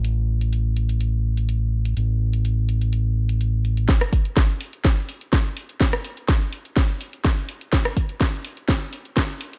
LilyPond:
<<
  \new Staff \with { instrumentName = "Fingered electric bass" } { \clef bass \time 4/4 \key a \phrygian \tempo 4 = 125 a,,1 | a,,1 | r1 | r1 |
r1 | }
  \new DrumStaff \with { instrumentName = "Drums" } \drummode { \time 4/4 hh8. hh16 hh8 hh16 hh16 hh8. hh16 hh8. hh16 | hh8. hh16 hh8 hh16 hh16 hh8. hh16 hh8 hh16 hh16 | <hh bd sn>16 ss16 <hho bd>16 hh16 <hh bd sn>8 hho16 hh16 <hh bd sn>8 hho16 hh16 <hh bd sn>8 hho16 hh16 | <hh bd sn>16 ss16 hho16 hh16 <hh bd sn>8 hho16 hh16 <hh bd sn>8 hho16 hh16 <hh bd sn>8 hho16 hh16 |
<hh bd sn>16 ss16 <hho bd>16 hh16 <hh bd sn>8 hho16 hh16 <hh bd sn>8 hho16 hh16 <hh bd sn>8 hho16 hh16 | }
>>